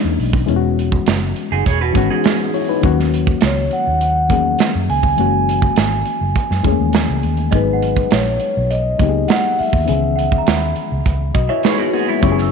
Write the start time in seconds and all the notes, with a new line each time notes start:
Already playing: E3 G#3 A#3 C#4 D4 D#4 F#4
0.04 E2
0.19 B1, open hi-hat
0.33 kick
0.46 E1 E3 G#3 B3 C#4 E4, closed hi-hat
0.56 F#4
0.79 closed hi-hat
0.92 kick
1.06 F#1, snare, closed hi-hat
1.36 closed hi-hat
1.52 F#1 D#4 G#4
1.66 E1 G#4 C#5, kick, closed hi-hat
1.81 F#4 B4
1.93 G#1 E3 G#3 B3 C#4, kick, closed hi-hat
1.97 F#4
2.10 D#4 G#4
2.24 B3 G#4, snare, closed hi-hat
2.54 E4 C#5, open hi-hat
2.69 D#4 B4
2.81 D#2 D#3 F#3 A#3 C#4, kick, closed hi-hat
2.85 F#4
3.00 snare
3.14 closed hi-hat
3.27 kick
3.41 C#2 C#5, snare, closed hi-hat
3.71 F#5, closed hi-hat
3.87 D#2
4.01 closed hi-hat
4.29 E2 D#3 F#3 A#3 C#4 G#4, kick, closed hi-hat
4.59 snare, closed hi-hat
4.75 F#2
4.89 C#2 G#5, open hi-hat
5.03 kick
5.16 F#1 E3 G#3 A#3 C#4 F#4, closed hi-hat
5.49 closed hi-hat
5.62 kick
5.76 G#1, snare, closed hi-hat
6.06 closed hi-hat
6.21 F#1
6.36 kick, closed hi-hat
6.51 F#2, snare
6.64 E2 E3 G#3 A3 C#4, kick, closed hi-hat
6.68 A#3 G#4
6.80 D#2
6.93 snare, closed hi-hat
7.09 C#2
7.23 D#2, closed hi-hat
7.37 closed hi-hat
7.51 G#1 F#3 G#3 B3 D#4 B4 D#5, kick, closed hi-hat
7.55 G#4
7.73 F#5
7.83 closed hi-hat
7.96 kick, closed hi-hat
8.11 A#1 C#5, snare, closed hi-hat
8.40 closed hi-hat
8.57 B1
8.71 D#5, closed hi-hat
8.99 C#2 F#3 A#3 B3 D#4 G4, kick, closed hi-hat
9.09 G#4
9.28 F#5, snare, closed hi-hat
9.59 E5, muted fingered electric bass stroke, open hi-hat
9.73 D#2, kick
9.86 C#2 D#3 E3 B3 C#4 G#4, closed hi-hat
10.16 F#5, closed hi-hat
10.32 kick
10.38 A#5
10.47 D#2, snare, closed hi-hat
10.57 B5
10.76 closed hi-hat
10.92 C#2
11.06 C#2, kick, closed hi-hat
11.34 B1 F#4 D#5, kick, closed hi-hat
11.49 E4 B4 C#5 E5
11.63 D#4 G#4 B4 C#5, snare, closed hi-hat
11.78 B3 F#4 G#4 B4
11.93 A#3 D#4 F#4 G#4, open hi-hat
12.08 G#3 B3 E4
12.21 F#1 F#3 B3 C#4 E4 C#6, kick, closed hi-hat
12.25 G4
12.32 G#4
12.38 E6, snare